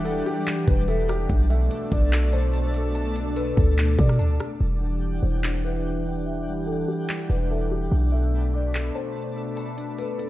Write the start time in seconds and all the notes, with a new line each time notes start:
Already playing: E1 E3 G3 D4 G4 D5 E5 F#5
0.05 D4 A4, closed hi-hat
0.26 G4, closed hi-hat
0.47 G3, clap, closed hi-hat
0.68 E1 D4 B4, kick, closed hi-hat
0.88 A4 E5, closed hi-hat
1.09 G4, cross-stick, closed hi-hat
1.29 B1 B2 A3 D4 A4 D5, kick, closed hi-hat
1.50 A4 E5, closed hi-hat
1.71 closed hi-hat
1.92 B1 D4 D5, kick, closed hi-hat
2.12 A4, clap, closed hi-hat
2.33 C5 A5, closed hi-hat
2.54 closed hi-hat
2.74 A4, closed hi-hat
2.95 A5, closed hi-hat
3.16 D4, closed hi-hat
3.36 A4 B4, closed hi-hat
3.56 D2 A4, kick, closed hi-hat
3.78 D4, clap, closed hi-hat
3.98 B2 A4 D5, kick, closed hi-hat
4.09 cross-stick
4.19 D2 A5, closed hi-hat
4.40 cross-stick, closed hi-hat
4.60 E1 E3 G3 D4 E4 G4 D5 F#5 G5
4.81 D4 D5
5.22 E1 G3 C5
5.43 D4, clap
5.64 B4 E5
6.06 D4
6.26 E5
6.47 G3
6.67 D4 A4
6.88 G4
7.09 G3, clap
7.30 E1 D4 B4
7.50 A4 E5
7.71 G4
7.92 B1 B2 A3 D4 A4 B5
8.12 A4 E5
8.54 D4 D5
8.74 A4, clap
8.95 C5 A5
9.36 A4
9.57 A5, closed hi-hat
9.78 D4, closed hi-hat
9.98 A4 B4, closed hi-hat
10.18 A4, closed hi-hat